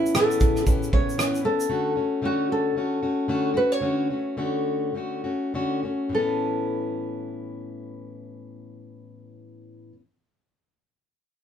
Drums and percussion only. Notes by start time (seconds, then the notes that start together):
0.06 shaker
0.15 cross-stick, shaker
0.31 shaker
0.40 kick, shaker
0.56 cross-stick, shaker
0.67 kick, shaker
0.83 shaker
0.93 kick
1.09 shaker
1.19 cross-stick, shaker
1.35 shaker
1.60 shaker